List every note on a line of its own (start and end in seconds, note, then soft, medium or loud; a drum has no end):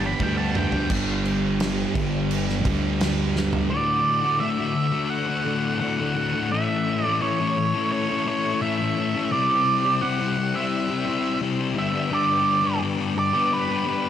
0.00 0.13 G1 loud
0.00 0.21 G3 medium
0.00 0.21 B3 medium
0.00 0.22 D4 medium
0.00 0.22 G4 medium
0.00 muted distorted electric guitar stroke medium
0.06 0.22 B5 loud
0.20 0.83 D2 loud
0.20 0.88 G2 loud
0.20 0.88 D3 medium
0.20 0.53 G3 medium
0.20 0.54 B3 medium
0.20 0.55 D4 loud
0.20 0.56 G4 loud
0.20 0.37 G5 loud
0.20 kick medium
0.38 0.56 B3 medium
0.38 0.57 D4 medium
0.38 0.58 G4 medium
0.38 0.55 A5 medium
0.42 0.55 G3 medium
0.54 0.73 G3 medium
0.54 0.72 B3 medium
0.54 0.71 D4 medium
0.54 0.70 G4 medium
0.54 0.90 G5 loud
0.54 mid tom medium
0.71 0.89 G3 medium
0.71 0.89 B3 medium
0.71 0.88 D4 medium
0.71 0.88 G4 medium
0.71 floor tom medium
0.88 1.85 G1 loud
0.88 1.93 G2 loud
0.88 1.94 D3 loud
0.88 3.67 B3 medium
0.88 3.67 D4 medium
0.88 3.67 G4 medium
0.88 3.67 D5 medium
0.88 3.67 G5 medium
0.88 kick loud
0.88 crash loud
0.88 crash medium
0.93 1.93 G3 loud
1.25 crash medium
1.60 snare loud
1.60 crash medium
1.94 2.66 G1 medium
1.94 3.69 G2 medium
1.94 3.69 D3 medium
1.94 3.68 G3 medium
1.94 kick loud
1.94 crash medium
2.31 crash medium
2.49 snare soft
2.65 3.60 D2 medium
2.65 2.99 G2 medium
2.65 3.00 D3 medium
2.65 2.99 G3 medium
2.65 kick loud
2.65 crash medium
3.00 3.69 G2 medium
3.00 3.70 D3 medium
3.00 3.70 G3 medium
3.00 snare loud
3.00 crash medium
3.36 snare medium
3.53 floor tom medium
3.70 4.39 D2 medium
3.70 4.40 A2 medium
3.70 4.25 D3 loud
3.70 4.24 A3 loud
3.70 4.22 F#4 loud
3.70 9.27 A4 medium
3.70 4.37 D5 medium
3.70 6.48 D5 medium
3.70 6.48 F#5 medium
3.70 6.48 D6 medium
4.23 4.41 D3 medium
4.23 4.42 A3 medium
4.23 4.42 F#4 medium
4.40 4.93 D2 loud
4.40 4.75 A2 loud
4.40 4.59 D3 loud
4.40 4.59 A3 loud
4.40 4.57 F#4 loud
4.40 5.13 E5 loud
4.58 4.75 D3 medium
4.58 4.76 A3 medium
4.58 4.75 F#4 medium
4.76 muted distorted electric guitar stroke medium
4.92 5.29 D3 medium
4.92 5.28 A3 medium
4.92 5.26 F#4 medium
5.10 5.78 F#5 loud
5.27 5.45 D3 medium
5.27 5.46 A3 medium
5.27 5.47 F#4 medium
5.45 5.81 A2 medium
5.45 5.81 D3 medium
5.45 5.82 A3 medium
5.45 5.82 F#4 medium
5.80 6.34 D2 medium
5.80 6.14 A2 loud
5.80 6.00 D3 loud
5.80 5.99 A3 medium
5.80 6.53 F#5 loud
5.84 5.97 F#4 loud
5.98 6.15 D3 medium
5.98 6.16 A3 medium
5.98 6.17 F#4 medium
6.15 6.49 A2 medium
6.15 6.35 D3 medium
6.15 6.34 A3 medium
6.15 6.32 F#4 medium
6.33 6.51 D3 medium
6.33 6.50 A3 medium
6.33 6.49 F#4 medium
6.51 7.20 A2 loud
6.51 7.22 E3 medium
6.51 7.05 A3 loud
6.51 7.04 C#4 loud
6.51 7.04 E4 loud
6.51 7.03 A4 medium
6.51 9.29 C#5 medium
6.51 11.73 E5 medium
6.51 7.06 E5 medium
6.51 9.29 C#6 medium
7.04 7.21 A3 medium
7.04 7.22 C#4 medium
7.04 7.23 E4 medium
7.04 7.23 A4 medium
7.04 7.22 D5 medium
7.21 7.74 A2 loud
7.21 7.74 E3 loud
7.21 7.41 A3 loud
7.21 7.40 C#4 loud
7.21 7.39 E4 loud
7.21 7.38 A4 loud
7.21 7.91 C#5 medium
7.39 7.57 A3 medium
7.39 7.57 C#4 medium
7.39 7.57 E4 medium
7.39 7.57 A4 medium
7.58 muted distorted electric guitar stroke soft
7.74 8.11 A3 medium
7.74 8.10 C#4 medium
7.74 8.09 E4 medium
7.74 8.08 A4 medium
7.92 8.27 C#5 medium
8.09 8.24 A3 medium
8.09 8.26 C#4 medium
8.09 8.27 E4 medium
8.09 8.28 A4 medium
8.26 8.61 A3 medium
8.26 8.62 C#4 medium
8.26 8.62 E4 medium
8.26 8.63 A4 medium
8.26 8.62 C#5 loud
8.61 9.14 A2 loud
8.61 9.14 E3 medium
8.61 8.81 A3 medium
8.61 8.80 C#4 loud
8.61 8.79 E4 loud
8.61 8.78 A4 loud
8.61 9.32 E5 loud
8.79 8.96 A3 medium
8.79 8.97 C#4 medium
8.79 8.98 E4 medium
8.79 8.98 A4 medium
8.97 9.15 A3 medium
8.97 9.14 C#4 medium
8.97 9.14 E4 medium
8.97 9.13 A4 medium
9.14 9.31 A3 medium
9.14 9.30 C#4 medium
9.14 9.30 E4 medium
9.14 9.29 A4 medium
9.31 10.01 C3 loud
9.31 10.02 G3 loud
9.31 9.86 C4 loud
9.31 9.85 E4 loud
9.31 11.74 G4 medium
9.31 9.85 G4 loud
9.31 9.83 C5 loud
9.31 14.09 D5 medium
9.31 10.04 D5 medium
9.31 11.74 C6 medium
9.84 10.02 C4 medium
9.84 10.02 E4 medium
9.84 10.04 G4 medium
9.84 10.04 C5 medium
10.01 10.54 C3 loud
10.01 11.41 G3 loud
10.01 10.20 C4 loud
10.01 10.19 E4 loud
10.01 10.19 G4 loud
10.01 10.17 C5 loud
10.01 10.56 F#5 loud
10.19 10.36 C4 medium
10.19 10.37 E4 medium
10.19 10.38 G4 medium
10.19 10.37 C5 medium
10.37 muted distorted electric guitar stroke soft
10.54 10.90 C4 medium
10.54 10.90 E4 medium
10.54 10.89 G4 medium
10.54 10.88 C5 medium
10.54 11.38 E5 medium
10.89 11.04 C4 medium
10.89 11.06 E4 medium
10.89 11.07 G4 medium
10.89 11.07 C5 medium
11.06 11.40 C4 medium
11.06 11.41 E4 medium
11.06 11.42 G4 medium
11.06 11.42 C5 loud
11.41 11.74 C3 medium
11.41 11.74 G3 loud
11.41 11.60 C4 medium
11.41 11.59 E4 medium
11.41 11.58 G4 loud
11.41 11.57 C5 loud
11.58 11.76 C4 medium
11.58 11.75 E4 medium
11.58 11.75 G4 medium
11.58 11.74 C5 medium
11.75 12.09 G2 loud
11.75 12.10 D3 loud
11.75 11.94 G3 loud
11.75 11.94 B3 loud
11.75 11.94 D4 medium
11.75 11.92 G4 loud
11.75 14.09 B4 medium
11.75 12.14 E5 loud
11.75 14.09 G5 medium
11.75 14.09 D6 medium
11.93 12.10 G3 medium
11.93 12.11 B3 medium
11.93 12.12 D4 medium
11.93 12.12 G4 medium
12.10 12.79 G2 loud
12.10 12.79 D3 loud
12.10 12.64 G3 loud
12.10 12.63 B3 loud
12.10 12.63 D4 loud
12.10 12.61 G4 loud
12.10 12.79 D5 loud
12.62 12.80 G3 medium
12.62 12.80 B3 medium
12.62 12.82 D4 medium
12.62 12.81 G4 medium
12.80 13.33 G2 loud
12.80 13.34 D3 medium
12.80 12.99 G3 loud
12.80 12.98 B3 loud
12.80 12.98 D4 loud
12.80 12.96 G4 loud
12.98 13.14 G3 medium
12.98 13.15 B3 medium
12.98 13.16 D4 medium
12.98 13.15 G4 medium
13.16 13.50 D5 loud
13.16 muted distorted electric guitar stroke soft
13.33 13.69 G3 medium
13.33 13.68 B3 medium
13.33 13.68 D4 medium
13.33 13.66 G4 medium
13.53 14.09 B4 medium
13.67 13.84 G3 medium
13.67 13.85 B3 medium
13.67 13.86 D4 medium
13.67 13.87 G4 medium
13.85 14.09 G3 medium
13.85 14.09 B3 medium
13.85 14.09 D4 medium
13.85 14.09 G4 medium